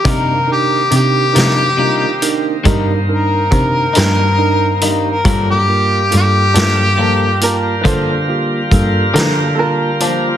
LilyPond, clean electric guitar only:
\new Staff \with { instrumentName = "Clean electric guitar" } { \time 12/8 \key g \minor \tempo 4. = 46 <c g bes ees'>8 r4 <g bes ees'>8 <c g bes ees'>8 r8 <c g bes ees'>8 r4 <g bes ees'>8 r8 <g bes ees'>8 | <g, f bes d'>8 r4 <f bes d'>8 <g, f bes d'>8 r8 <g, f bes d'>8 r4 <f bes d'>8 r8 <f bes d'>8 | }